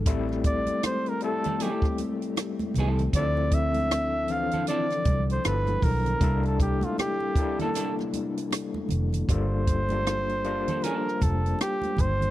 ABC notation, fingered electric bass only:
X:1
M:4/4
L:1/16
Q:"Swing 16ths" 1/4=78
K:Gdor
V:1 name="Fingered electric bass" clef=bass
A,,,4 z8 z2 C,,2 | D,,6- D,, z3 C,,2 G,,,2 =B,,,2 | C,,4 z8 z2 F,,,2 | G,,,6- G,,, z3 F,,,2 z2 G,,,2 |]